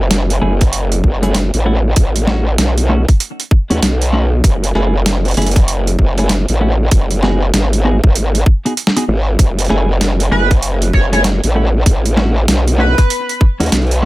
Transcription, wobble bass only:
0.00 0.40 F#1 loud
0.42 1.02 F#1 medium
1.04 1.51 F#1 medium
1.54 1.95 A1 loud
1.97 2.57 A1 medium
2.58 3.05 B1 loud
3.70 3.80 D#2 medium
3.82 4.42 B1 loud
4.44 4.73 F#1 loud
4.75 5.35 F#1 loud
5.37 5.97 F#1 loud
5.99 6.46 F#1 loud
6.49 6.90 A1 loud
6.92 7.52 F#1 loud
7.54 8.01 G#1 loud
8.04 8.44 G#1 loud
9.08 9.37 G#1 medium
9.39 9.68 F#1 loud
9.70 10.30 F#1 loud
10.32 10.92 F#1 loud
10.93 11.41 F#1 medium
11.44 11.85 A1 loud
11.86 12.46 A1 medium
12.48 12.95 B1 loud
13.60 13.70 D#2 medium
13.72 14.05 B1 loud

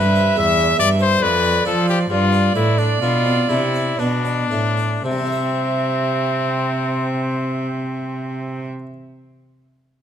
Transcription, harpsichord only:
0.00 0.33 G2 medium
0.00 0.18 G4 medium
0.16 0.38 C5 medium
0.36 0.75 E2 medium
0.36 0.59 E4 medium
0.57 0.79 D4 soft
0.77 1.18 G2 medium
0.77 1.01 E4 medium
0.99 1.22 C5 medium
1.21 1.61 F2 medium
1.43 1.67 D5 medium
1.65 2.06 F3 medium
1.65 1.89 A4 medium
1.88 2.10 D5 medium
2.10 2.51 G2 medium
2.32 2.56 D5 medium
2.55 2.97 A2 medium
2.55 2.79 B4 medium
2.78 3.02 D5 medium
3.02 3.45 B2 medium
3.02 3.26 D4 soft
3.25 3.49 C4 soft
3.49 3.95 C3 medium
3.49 3.75 D4 medium
3.74 4.01 D5 soft
3.99 4.47 B2 medium
3.99 4.26 D4 soft
4.25 4.53 D5 medium
4.51 5.00 A2 medium
4.51 4.79 D4 soft
4.77 5.04 D5 soft
5.04 8.65 C3 medium
5.11 8.72 G3 medium
5.18 8.79 C4 medium
5.25 8.86 E4 medium
5.32 8.93 C5 medium

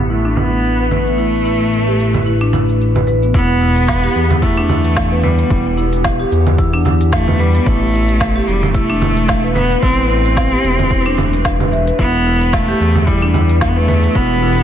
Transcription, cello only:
0.10 0.39 A3 medium
0.38 0.91 B3 loud
0.92 2.77 A3 medium
3.34 4.38 B3 loud
4.43 5.25 A3 loud
5.24 5.78 G3 medium
7.13 7.41 A3 medium
7.40 7.68 G3 medium
7.67 8.49 A3 medium
8.47 8.74 G3 medium
8.75 9.52 A3 loud
9.56 9.81 B3 loud
9.83 10.08 C4 loud
10.10 11.68 C4 loud
11.99 12.55 B3 loud
12.53 13.08 A3 loud
13.07 13.61 G3 medium
13.61 13.71 A3 medium
13.69 13.78 B3 medium
13.77 14.17 A3 loud
14.15 14.63 B3 loud

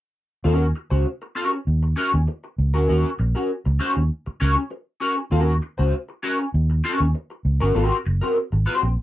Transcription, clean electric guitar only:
0.44 0.65 C#4 medium
0.44 0.66 F#4 medium
0.44 0.66 A#4 medium
0.76 muted clean electric guitar stroke soft
0.90 1.07 C#4 medium
0.90 1.06 F#4 medium
0.90 1.06 C5 medium
1.22 muted clean electric guitar stroke medium
1.35 1.57 C#4 medium
1.35 1.52 F#4 medium
1.35 1.51 A#4 medium
1.52 muted clean electric guitar stroke soft
1.83 muted clean electric guitar stroke soft
1.96 2.18 C#4 medium
1.96 2.12 F#4 medium
1.96 2.11 A#4 medium
2.13 muted clean electric guitar stroke soft
2.27 muted clean electric guitar stroke soft
2.44 muted clean electric guitar stroke soft
2.74 2.87 C#4 medium
2.74 2.88 F#4 medium
2.74 2.88 A#4 medium
2.88 3.09 C#4 medium
2.88 3.09 F#4 medium
2.88 3.10 A#4 medium
3.19 muted clean electric guitar stroke soft
3.35 3.51 C#4 medium
3.35 3.50 F#4 medium
3.35 3.50 A#4 medium
3.65 muted clean electric guitar stroke soft
3.79 4.01 C#4 medium
3.79 3.95 F#4 medium
3.79 3.95 C5 medium
3.96 muted clean electric guitar stroke soft
4.26 muted clean electric guitar stroke soft
4.40 4.61 C#4 medium
4.40 4.56 F#4 medium
4.40 4.55 A#4 medium
4.56 muted clean electric guitar stroke soft
4.71 muted clean electric guitar stroke soft
5.00 5.18 C#4 medium
5.00 5.17 F#4 medium
5.00 5.16 A#4 medium
5.17 muted clean electric guitar stroke soft
5.31 5.52 C#4 medium
5.31 5.53 F#4 medium
5.31 5.53 A#4 medium
5.62 muted clean electric guitar stroke soft
5.78 5.94 C#4 soft
5.78 5.94 F#4 medium
5.78 5.93 C5 medium
6.09 muted clean electric guitar stroke soft
6.23 6.44 C#4 medium
6.23 6.39 F#4 medium
6.23 6.38 A#4 medium
6.39 muted clean electric guitar stroke soft
6.70 muted clean electric guitar stroke soft
6.84 7.05 C#4 medium
6.84 7.00 F#4 medium
6.84 6.99 A#4 medium
7.01 muted clean electric guitar stroke soft
7.14 muted clean electric guitar stroke soft
7.30 muted clean electric guitar stroke soft
7.60 7.74 C#4 medium
7.60 7.74 F#4 medium
7.60 7.75 A#4 medium
7.75 7.96 C4 medium
7.75 7.96 F#4 medium
7.75 7.97 A#4 medium
8.06 muted clean electric guitar stroke soft
8.21 8.38 C4 medium
8.21 8.37 F#4 medium
8.21 8.37 A#4 medium
8.52 muted clean electric guitar stroke soft
8.66 8.87 C4 medium
8.66 8.82 F#4 medium
8.66 8.82 C5 medium
8.83 muted clean electric guitar stroke soft

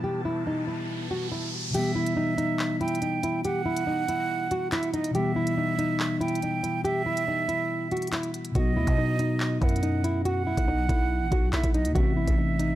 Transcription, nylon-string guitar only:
0.04 0.21 G4 loud
0.25 0.43 E4 medium
0.47 0.64 D#4 medium
0.67 1.08 E4 medium
1.11 1.28 F#4 medium
1.32 1.49 E4 medium
1.75 1.92 G4 medium
1.95 2.13 E4 medium
2.17 2.34 D#4 medium
2.38 2.78 D#4 medium
2.81 2.98 E4 medium
3.02 3.20 D#4 medium
3.24 3.41 E4 medium
3.45 3.62 G4 loud
3.66 3.83 E4 medium
3.87 4.05 D#4 medium
4.09 4.49 E4 medium
4.51 4.69 F#4 medium
4.72 4.90 E4 loud
4.94 5.11 D#4 medium
5.15 5.32 G4 loud
5.36 5.54 E4 medium
5.58 5.75 D#4 medium
5.79 6.19 D#4 medium
6.21 6.38 E4 medium
6.43 6.60 D#4 medium
6.63 6.81 E4 medium
6.85 7.02 G4 loud
7.06 7.24 E4 medium
7.28 7.45 D#4 medium
7.48 7.89 E4 medium
7.92 8.09 F#4 medium
8.12 8.30 E4 medium
8.55 8.73 F#4 loud
8.76 8.94 E4 medium
8.98 9.15 D#4 medium
9.19 9.59 D#4 medium
9.61 9.79 E4 medium
9.83 10.00 D#4 medium
10.04 10.22 E4 medium
10.25 10.43 F#4 loud
10.47 10.64 E4 medium
10.68 10.85 D#4 medium
10.89 11.29 E4 medium
11.31 11.49 F#4 medium
11.53 11.71 E4 medium
11.74 11.92 D#4 medium
11.95 12.13 F#4 loud
12.17 12.34 E4 medium
12.38 12.55 D#4 medium
12.59 12.75 D#4 medium

